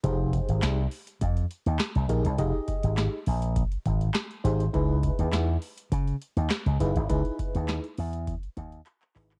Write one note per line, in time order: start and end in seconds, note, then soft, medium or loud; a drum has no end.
0.03 0.39 F1 loud
0.03 0.79 D#4 medium
0.03 0.79 G4 medium
0.03 0.79 G#4 medium
0.03 0.79 C5 medium
0.03 kick loud
0.03 closed hi-hat medium
0.33 kick medium
0.33 closed hi-hat medium
0.49 0.60 G#1 medium
0.49 closed hi-hat medium
0.62 0.85 C2 medium
0.62 snare medium
0.62 clap medium
0.62 closed hi-hat medium
0.91 open hi-hat medium
1.07 closed hi-hat medium
1.21 1.44 F2 loud
1.21 kick loud
1.21 closed hi-hat medium
1.37 closed hi-hat soft
1.51 closed hi-hat medium
1.66 1.77 D#2 medium
1.66 closed hi-hat soft
1.79 snare loud
1.79 clap medium
1.79 closed hi-hat medium
1.95 2.06 C2 medium
1.95 closed hi-hat soft
2.09 2.22 A#1 medium
2.09 2.28 D#4 medium
2.09 2.29 G4 medium
2.09 2.29 G#4 medium
2.09 2.29 A#4 medium
2.09 closed hi-hat medium
2.25 2.36 C2 loud
2.25 closed hi-hat medium
2.38 2.51 F1 loud
2.38 3.14 D#4 medium
2.38 3.14 G4 medium
2.38 3.14 G#4 medium
2.38 3.14 D#5 medium
2.38 kick loud
2.38 closed hi-hat loud
2.68 kick medium
2.68 closed hi-hat medium
2.83 3.07 G#1 medium
2.83 closed hi-hat medium
2.97 snare medium
2.97 clap medium
2.97 closed hi-hat medium
3.26 3.62 A#1 medium
3.26 open hi-hat medium
3.42 closed hi-hat medium
3.56 kick loud
3.56 closed hi-hat medium
3.72 closed hi-hat soft
3.86 4.09 G#1 medium
3.86 kick medium
3.86 closed hi-hat medium
4.01 closed hi-hat soft
4.14 snare loud
4.14 clap medium
4.14 closed hi-hat medium
4.31 closed hi-hat soft
4.44 4.68 G#1 medium
4.44 4.64 D#4 medium
4.44 4.64 G4 medium
4.44 4.64 G#4 medium
4.44 4.64 C5 loud
4.44 closed hi-hat medium
4.60 closed hi-hat medium
4.73 5.09 C#2 loud
4.73 5.49 D#4 medium
4.73 5.49 E4 medium
4.73 5.49 G#4 medium
4.73 5.50 B4 loud
4.73 kick loud
4.73 closed hi-hat loud
5.03 kick medium
5.03 closed hi-hat medium
5.19 5.30 D#2 medium
5.19 closed hi-hat medium
5.33 5.56 E2 medium
5.33 snare loud
5.33 clap medium
5.33 closed hi-hat medium
5.62 open hi-hat medium
5.78 closed hi-hat medium
5.92 6.15 C#3 loud
5.92 kick loud
5.92 closed hi-hat medium
6.08 closed hi-hat soft
6.22 closed hi-hat medium
6.37 6.48 D#2 medium
6.37 closed hi-hat soft
6.50 snare loud
6.50 clap medium
6.50 closed hi-hat medium
6.66 6.77 C#2 medium
6.66 closed hi-hat soft
6.80 6.92 F#1 medium
6.80 6.99 D#4 medium
6.80 6.99 E4 medium
6.80 6.99 G#4 medium
6.80 7.00 B4 loud
6.80 closed hi-hat medium
6.96 7.07 G#1 medium
6.96 closed hi-hat soft
7.09 7.22 C#2 loud
7.09 7.85 D#4 medium
7.09 7.85 E4 medium
7.09 7.85 G#4 medium
7.09 7.85 B4 loud
7.09 kick loud
7.09 closed hi-hat medium
7.25 closed hi-hat soft
7.39 kick loud
7.39 closed hi-hat medium
7.55 7.78 D#2 medium
7.55 closed hi-hat medium
7.68 snare loud
7.68 clap medium
7.68 closed hi-hat medium
7.84 closed hi-hat soft
7.97 8.33 E2 medium
7.97 open hi-hat medium
8.13 closed hi-hat medium
8.27 kick loud
8.27 closed hi-hat medium
8.43 closed hi-hat soft
8.57 8.80 D#2 loud
8.57 kick medium
8.57 closed hi-hat medium
8.72 closed hi-hat soft
8.86 clap medium
8.86 closed hi-hat medium
9.02 clap medium
9.02 closed hi-hat soft
9.15 9.38 G#1 medium
9.15 9.34 D#4 medium
9.15 9.35 E4 medium
9.15 9.35 G#4 medium
9.15 9.35 B4 medium
9.15 clap medium
9.15 open hi-hat medium
9.31 clap medium
9.31 closed hi-hat medium